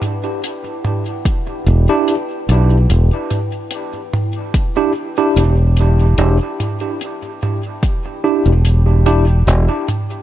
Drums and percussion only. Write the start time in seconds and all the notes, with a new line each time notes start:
0.02 closed hi-hat, mid tom
0.44 closed hi-hat
0.85 mid tom
1.25 kick, closed hi-hat
2.08 closed hi-hat
2.49 closed hi-hat
2.90 closed hi-hat
3.30 closed hi-hat, mid tom
3.71 closed hi-hat
4.13 mid tom
4.54 kick, closed hi-hat
5.37 closed hi-hat
5.77 closed hi-hat
6.18 closed hi-hat
6.60 closed hi-hat, mid tom
7.01 closed hi-hat
7.43 mid tom
7.83 kick, closed hi-hat
8.65 closed hi-hat
9.06 closed hi-hat
9.48 closed hi-hat
9.88 closed hi-hat, mid tom